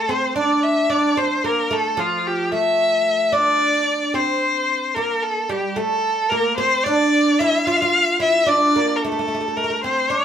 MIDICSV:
0, 0, Header, 1, 3, 480
1, 0, Start_track
1, 0, Tempo, 541516
1, 85, Time_signature, 6, 3, 24, 8
1, 9085, End_track
2, 0, Start_track
2, 0, Title_t, "Erhu"
2, 0, Program_c, 0, 110
2, 0, Note_on_c, 0, 69, 81
2, 86, Note_on_c, 0, 72, 88
2, 99, Note_off_c, 0, 69, 0
2, 318, Note_off_c, 0, 72, 0
2, 323, Note_on_c, 0, 74, 81
2, 559, Note_on_c, 0, 76, 85
2, 573, Note_off_c, 0, 74, 0
2, 798, Note_on_c, 0, 74, 87
2, 811, Note_off_c, 0, 76, 0
2, 1040, Note_on_c, 0, 72, 79
2, 1053, Note_off_c, 0, 74, 0
2, 1283, Note_on_c, 0, 70, 76
2, 1297, Note_off_c, 0, 72, 0
2, 1534, Note_on_c, 0, 69, 80
2, 1547, Note_off_c, 0, 70, 0
2, 1770, Note_on_c, 0, 65, 72
2, 1783, Note_off_c, 0, 69, 0
2, 2012, Note_on_c, 0, 67, 75
2, 2025, Note_off_c, 0, 65, 0
2, 2239, Note_off_c, 0, 67, 0
2, 2244, Note_on_c, 0, 76, 84
2, 2959, Note_on_c, 0, 74, 91
2, 2973, Note_off_c, 0, 76, 0
2, 3679, Note_on_c, 0, 72, 83
2, 3692, Note_off_c, 0, 74, 0
2, 4383, Note_on_c, 0, 70, 81
2, 4396, Note_off_c, 0, 72, 0
2, 4631, Note_on_c, 0, 69, 77
2, 4644, Note_off_c, 0, 70, 0
2, 4871, Note_on_c, 0, 67, 80
2, 4884, Note_off_c, 0, 69, 0
2, 5112, Note_on_c, 0, 69, 90
2, 5126, Note_off_c, 0, 67, 0
2, 5581, Note_on_c, 0, 70, 83
2, 5595, Note_off_c, 0, 69, 0
2, 5818, Note_off_c, 0, 70, 0
2, 5823, Note_on_c, 0, 72, 95
2, 6058, Note_on_c, 0, 74, 100
2, 6071, Note_off_c, 0, 72, 0
2, 6549, Note_on_c, 0, 76, 95
2, 6562, Note_off_c, 0, 74, 0
2, 6781, Note_on_c, 0, 77, 99
2, 6794, Note_off_c, 0, 76, 0
2, 6876, Note_on_c, 0, 76, 83
2, 6889, Note_off_c, 0, 77, 0
2, 6914, Note_on_c, 0, 77, 104
2, 6928, Note_off_c, 0, 76, 0
2, 7273, Note_off_c, 0, 77, 0
2, 7279, Note_on_c, 0, 76, 98
2, 7520, Note_on_c, 0, 74, 98
2, 7533, Note_off_c, 0, 76, 0
2, 7943, Note_on_c, 0, 70, 59
2, 7956, Note_off_c, 0, 74, 0
2, 7996, Note_on_c, 0, 69, 79
2, 8009, Note_off_c, 0, 70, 0
2, 8478, Note_on_c, 0, 70, 78
2, 8491, Note_off_c, 0, 69, 0
2, 8711, Note_off_c, 0, 70, 0
2, 8716, Note_on_c, 0, 72, 84
2, 8947, Note_on_c, 0, 74, 89
2, 8960, Note_off_c, 0, 72, 0
2, 9085, Note_off_c, 0, 74, 0
2, 9085, End_track
3, 0, Start_track
3, 0, Title_t, "Oud"
3, 0, Program_c, 1, 24
3, 0, Note_on_c, 1, 57, 64
3, 78, Note_on_c, 1, 60, 74
3, 91, Note_off_c, 1, 57, 0
3, 312, Note_off_c, 1, 60, 0
3, 316, Note_on_c, 1, 62, 79
3, 784, Note_off_c, 1, 62, 0
3, 794, Note_on_c, 1, 62, 72
3, 1035, Note_off_c, 1, 62, 0
3, 1039, Note_on_c, 1, 60, 67
3, 1278, Note_on_c, 1, 58, 67
3, 1288, Note_off_c, 1, 60, 0
3, 1509, Note_off_c, 1, 58, 0
3, 1513, Note_on_c, 1, 57, 69
3, 1747, Note_on_c, 1, 53, 63
3, 1765, Note_off_c, 1, 57, 0
3, 2234, Note_on_c, 1, 57, 59
3, 2248, Note_off_c, 1, 53, 0
3, 2921, Note_off_c, 1, 57, 0
3, 2945, Note_on_c, 1, 62, 69
3, 3637, Note_off_c, 1, 62, 0
3, 3670, Note_on_c, 1, 60, 68
3, 4399, Note_on_c, 1, 58, 68
3, 4416, Note_off_c, 1, 60, 0
3, 4866, Note_off_c, 1, 58, 0
3, 4870, Note_on_c, 1, 55, 71
3, 5104, Note_off_c, 1, 55, 0
3, 5107, Note_on_c, 1, 57, 71
3, 5595, Note_off_c, 1, 57, 0
3, 5599, Note_on_c, 1, 58, 76
3, 5831, Note_on_c, 1, 60, 82
3, 5847, Note_off_c, 1, 58, 0
3, 6078, Note_off_c, 1, 60, 0
3, 6082, Note_on_c, 1, 62, 83
3, 6559, Note_off_c, 1, 62, 0
3, 6563, Note_on_c, 1, 64, 85
3, 6785, Note_off_c, 1, 64, 0
3, 6798, Note_on_c, 1, 65, 81
3, 6921, Note_off_c, 1, 65, 0
3, 6931, Note_on_c, 1, 65, 76
3, 7260, Note_off_c, 1, 65, 0
3, 7267, Note_on_c, 1, 64, 81
3, 7498, Note_off_c, 1, 64, 0
3, 7501, Note_on_c, 1, 62, 77
3, 7759, Note_off_c, 1, 62, 0
3, 7764, Note_on_c, 1, 58, 70
3, 8010, Note_off_c, 1, 58, 0
3, 8017, Note_on_c, 1, 57, 70
3, 8071, Note_off_c, 1, 57, 0
3, 8081, Note_on_c, 1, 57, 49
3, 8135, Note_off_c, 1, 57, 0
3, 8146, Note_on_c, 1, 57, 52
3, 8209, Note_off_c, 1, 57, 0
3, 8226, Note_on_c, 1, 57, 44
3, 8272, Note_off_c, 1, 57, 0
3, 8283, Note_on_c, 1, 57, 49
3, 8328, Note_off_c, 1, 57, 0
3, 8338, Note_on_c, 1, 57, 40
3, 8393, Note_off_c, 1, 57, 0
3, 8403, Note_on_c, 1, 57, 46
3, 8472, Note_off_c, 1, 57, 0
3, 8483, Note_on_c, 1, 57, 45
3, 8534, Note_off_c, 1, 57, 0
3, 8545, Note_on_c, 1, 57, 52
3, 8587, Note_off_c, 1, 57, 0
3, 8598, Note_on_c, 1, 57, 48
3, 8669, Note_off_c, 1, 57, 0
3, 8723, Note_on_c, 1, 60, 68
3, 8948, Note_off_c, 1, 60, 0
3, 8951, Note_on_c, 1, 62, 74
3, 9085, Note_off_c, 1, 62, 0
3, 9085, End_track
0, 0, End_of_file